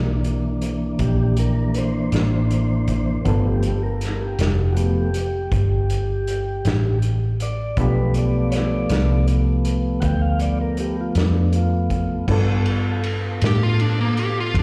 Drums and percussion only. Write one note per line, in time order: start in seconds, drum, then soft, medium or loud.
0.24 closed hi-hat medium
0.62 closed hi-hat medium
0.99 kick loud
0.99 closed hi-hat medium
1.37 closed hi-hat medium
1.74 closed hi-hat medium
2.12 snare loud
2.12 closed hi-hat medium
2.51 closed hi-hat medium
2.88 kick medium
2.88 closed hi-hat medium
3.25 kick medium
3.25 closed hi-hat medium
3.63 closed hi-hat medium
4.01 snare soft
4.01 closed hi-hat medium
4.39 snare loud
4.39 closed hi-hat medium
4.77 closed hi-hat medium
5.14 closed hi-hat medium
5.52 kick loud
5.52 closed hi-hat medium
5.90 closed hi-hat medium
6.27 closed hi-hat medium
6.65 snare loud
6.65 closed hi-hat medium
7.02 closed hi-hat medium
7.40 closed hi-hat medium
7.77 kick medium
7.77 closed hi-hat medium
8.14 closed hi-hat medium
8.52 snare soft
8.52 closed hi-hat medium
8.89 snare loud
8.89 closed hi-hat medium
9.28 closed hi-hat medium
9.65 closed hi-hat medium
10.02 kick loud
10.02 closed hi-hat medium
10.40 closed hi-hat medium
10.77 closed hi-hat soft
11.15 snare loud
11.15 closed hi-hat medium
11.53 closed hi-hat medium
11.90 kick medium
11.90 closed hi-hat medium
12.28 kick loud
12.28 crash medium
12.65 ride medium
13.03 ride medium
13.41 snare loud
13.41 ride medium
13.80 ride medium
14.17 ride medium
14.54 kick loud
14.54 ride medium